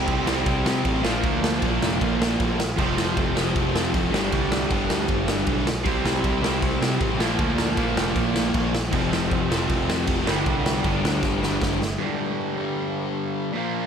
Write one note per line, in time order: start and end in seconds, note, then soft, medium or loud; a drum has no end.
0.00 0.25 C3 medium
0.00 0.25 G3 loud
0.00 0.23 C4 medium
0.00 0.25 E4 loud
0.00 0.25 G4 loud
0.08 0.25 C2 medium
0.08 kick loud
0.08 crash medium
0.25 0.44 C2 medium
0.25 0.82 C3 medium
0.25 0.83 G3 medium
0.25 0.83 C4 medium
0.25 1.03 E4 medium
0.25 1.03 G4 loud
0.25 snare loud
0.46 0.64 C2 loud
0.46 kick loud
0.46 crash medium
0.65 0.83 C3 medium
0.65 snare loud
0.83 1.03 A1 medium
0.83 1.02 C3 medium
0.83 1.03 G3 medium
0.83 1.04 C4 medium
0.83 kick loud
0.83 crash medium
1.02 1.22 A#1 loud
1.02 1.60 A#2 medium
1.02 1.62 F3 loud
1.02 1.62 A#3 loud
1.02 1.61 D4 loud
1.02 snare loud
1.23 1.58 D2 medium
1.23 kick loud
1.23 crash medium
1.44 snare loud
1.61 1.80 A#1 loud
1.61 2.18 A#2 medium
1.61 2.19 F3 medium
1.61 2.18 A#3 medium
1.61 2.58 D4 medium
1.61 kick loud
1.61 crash medium
1.82 1.99 F1 medium
1.82 snare loud
2.01 2.36 A#1 loud
2.01 kick loud
2.01 crash medium
2.19 2.58 A#2 medium
2.19 2.58 F3 medium
2.19 2.57 A#3 medium
2.19 snare loud
2.40 2.74 A#1 medium
2.40 kick loud
2.40 crash medium
2.60 snare loud
2.77 2.95 F1 loud
2.77 3.34 F2 loud
2.77 3.35 C3 loud
2.77 3.33 F3 loud
2.77 3.35 A3 loud
2.77 3.34 C4 loud
2.77 kick loud
2.77 crash medium
2.98 3.15 F1 medium
2.98 snare loud
3.17 3.34 F1 loud
3.17 kick loud
3.17 crash medium
3.34 3.53 F1 medium
3.34 3.92 F2 medium
3.34 3.93 C3 medium
3.34 3.92 F3 loud
3.34 4.12 A3 medium
3.34 4.11 C4 loud
3.34 snare loud
3.56 3.72 F1 loud
3.56 kick loud
3.56 crash medium
3.75 3.92 F2 medium
3.75 snare loud
3.93 4.11 F1 medium
3.93 4.11 F2 medium
3.93 4.12 C3 medium
3.93 4.13 F3 loud
3.93 kick loud
3.93 crash medium
4.12 4.30 G1 loud
4.12 4.68 G2 medium
4.12 4.70 D3 medium
4.12 4.72 G3 loud
4.12 4.69 B3 loud
4.12 4.70 D4 loud
4.12 snare loud
4.32 4.67 C2 loud
4.32 kick loud
4.32 crash medium
4.52 snare loud
4.69 4.88 G1 medium
4.69 5.26 G2 medium
4.69 5.27 D3 medium
4.69 5.26 G3 medium
4.69 5.66 B3 medium
4.69 5.66 D4 medium
4.69 kick loud
4.69 crash medium
4.90 5.07 D2 medium
4.90 snare loud
5.08 5.43 G1 medium
5.08 kick loud
5.08 crash medium
5.27 5.66 G2 medium
5.27 5.66 D3 medium
5.27 5.65 G3 medium
5.27 snare loud
5.47 5.86 B1 medium
5.47 kick loud
5.47 crash medium
5.67 snare loud
5.84 6.03 C2 loud
5.84 6.41 C3 medium
5.84 6.42 G3 loud
5.84 6.40 C4 medium
5.84 6.41 E4 loud
5.84 kick loud
5.84 crash medium
6.05 6.22 C2 medium
6.05 snare loud
6.24 6.41 C2 medium
6.24 kick loud
6.24 crash medium
6.41 6.60 C2 medium
6.41 6.98 C3 medium
6.41 7.00 G3 medium
6.41 6.99 C4 medium
6.41 7.18 E4 loud
6.41 snare loud
6.62 6.79 C2 loud
6.62 kick loud
6.62 crash medium
6.82 6.99 C3 loud
6.82 snare loud
6.99 7.18 A1 medium
6.99 7.18 C3 medium
6.99 7.19 G3 medium
6.99 7.20 C4 loud
6.99 kick loud
6.99 crash medium
7.19 7.37 A#1 loud
7.19 7.75 A#2 medium
7.19 7.77 F3 medium
7.19 7.77 A#3 loud
7.19 7.77 D4 loud
7.19 snare loud
7.39 7.73 D2 loud
7.39 kick loud
7.39 crash medium
7.58 snare loud
7.76 7.95 A#1 loud
7.76 8.33 A#2 medium
7.76 8.34 F3 medium
7.76 8.33 A#3 medium
7.76 8.73 D4 medium
7.76 kick loud
7.76 crash medium
7.97 8.14 F1 medium
7.97 snare loud
8.16 8.50 A#1 medium
8.16 kick loud
8.16 crash medium
8.34 8.73 A#2 medium
8.34 8.72 F3 medium
8.34 8.72 A#3 medium
8.34 snare loud
8.54 8.89 A#1 loud
8.54 kick loud
8.54 crash medium
8.75 snare loud
8.91 9.10 F1 loud
8.91 9.48 F2 medium
8.91 9.49 C3 loud
8.91 9.48 F3 loud
8.91 9.50 A3 loud
8.91 9.49 C4 loud
8.91 kick loud
8.91 crash medium
9.12 9.29 F1 loud
9.12 snare loud
9.31 9.48 F1 loud
9.31 kick loud
9.31 crash medium
9.49 9.68 F1 medium
9.49 10.06 F2 medium
9.49 10.07 C3 medium
9.49 10.06 F3 medium
9.49 10.26 A3 medium
9.49 10.26 C4 medium
9.49 snare loud
9.69 9.87 F1 loud
9.69 kick loud
9.69 crash medium
9.88 10.06 F2 medium
9.88 snare loud
10.07 10.25 F1 medium
10.07 10.25 F2 medium
10.07 10.26 C3 medium
10.07 10.27 F3 medium
10.07 kick loud
10.07 crash medium
10.26 10.44 G1 loud
10.26 10.83 G2 loud
10.26 10.84 D3 medium
10.26 10.84 G3 loud
10.26 10.83 B3 loud
10.26 10.84 D4 loud
10.26 snare loud
10.46 10.81 C2 loud
10.46 kick loud
10.46 crash medium
10.66 snare loud
10.84 11.02 G1 medium
10.84 11.41 G2 medium
10.84 11.41 D3 medium
10.84 11.40 G3 medium
10.84 11.79 B3 medium
10.84 11.80 D4 medium
10.84 kick loud
10.84 crash medium
11.04 11.21 D2 medium
11.04 snare loud
11.23 11.57 G1 loud
11.23 kick loud
11.23 snare medium
11.41 11.80 G2 medium
11.41 11.80 D3 medium
11.41 11.79 G3 loud
11.41 snare medium
11.62 11.96 G1 medium
11.62 kick loud
11.62 snare loud
11.82 snare medium
11.98 12.56 G2 medium
11.98 12.57 D3 medium
11.98 12.56 G3 medium
12.57 13.54 G2 medium
12.57 13.53 D3 medium
12.57 13.53 G3 medium
13.53 13.87 A#2 medium
13.53 13.87 F3 medium
13.53 13.87 A#3 medium